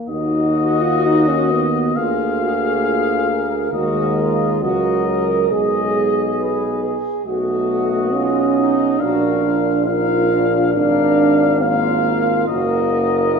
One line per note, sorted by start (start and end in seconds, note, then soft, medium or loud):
0.00 0.11 A#3 medium
0.08 1.92 D#2 medium
0.08 0.83 D#4 medium
0.08 1.91 F#4 medium
0.08 1.93 F#4 medium
0.08 1.97 D#5 medium
0.82 1.06 F4 loud
1.05 1.30 D#4 loud
1.28 1.53 C#4 medium
1.51 1.99 B3 medium
1.96 3.69 D2 medium
1.96 3.56 A#3 medium
1.96 2.41 F4 medium
1.96 3.69 G#4 medium
1.96 3.72 F5 medium
2.41 2.84 F#4 medium
2.83 3.27 F4 medium
3.27 3.72 A#4 medium
3.73 4.63 D#2 medium
3.73 4.63 G#3 medium
3.73 4.17 F#4 medium
3.73 4.60 A#4 medium
3.73 4.60 D#5 medium
4.19 4.62 F4 medium
4.61 5.50 C#2 medium
4.61 5.52 F#3 medium
4.61 5.05 F#4 medium
4.61 5.48 A#4 medium
4.61 5.49 D#5 medium
5.06 5.49 A#4 medium
5.49 6.96 B1 medium
5.49 6.38 G#3 medium
5.49 7.21 G#4 medium
5.49 6.22 G#4 medium
5.49 6.96 D#5 medium
6.39 6.81 B4 medium
6.83 7.25 G#4 medium
7.25 8.95 B1 medium
7.25 8.14 A3 medium
7.25 8.96 F#4 medium
7.25 8.12 F#4 medium
7.25 9.02 D#5 medium
8.12 9.01 C#4 loud
8.12 8.57 F4 medium
8.57 8.99 D#4 medium
8.98 10.77 A#1 medium
8.98 9.89 D4 medium
8.98 9.43 F#4 medium
8.98 9.70 A#4 medium
8.98 9.85 F5 medium
9.45 9.88 F4 medium
9.86 10.32 D#4 medium
9.86 10.75 F4 loud
9.86 10.73 A#4 medium
9.86 10.72 F5 medium
10.32 11.63 D4 medium
10.73 12.48 G#1 medium
10.73 11.64 D4 loud
10.73 11.60 A#4 medium
10.73 11.59 F5 medium
11.61 12.48 A#3 loud
11.61 12.49 F4 medium
11.61 12.46 A#4 medium
11.61 12.46 F5 medium
12.48 13.39 F#1 medium
12.48 13.39 A#3 loud
12.48 13.33 F#4 medium
12.48 13.39 A#4 medium
12.48 13.39 D#5 medium
13.34 13.39 D#4 medium